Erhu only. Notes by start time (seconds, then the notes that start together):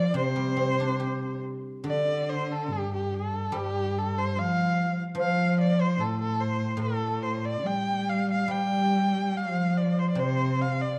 Already playing: D5
0.18 C5
1.87 D5
2.29 C5
2.52 A4
2.72 G4
2.94 G4
3.14 A4
3.57 G4
3.98 A4
4.18 C5
4.39 F5
5.20 F5
5.60 D5
5.81 C5
6.01 A4
6.21 A4
6.40 C5
6.82 A4
7.22 C5
7.45 D5
7.66 G5
8.09 F5
8.31 F5
8.51 G5
9.37 F5
9.77 D5
9.99 C5
10.10 D5
10.19 C5
10.61 F5
10.81 D5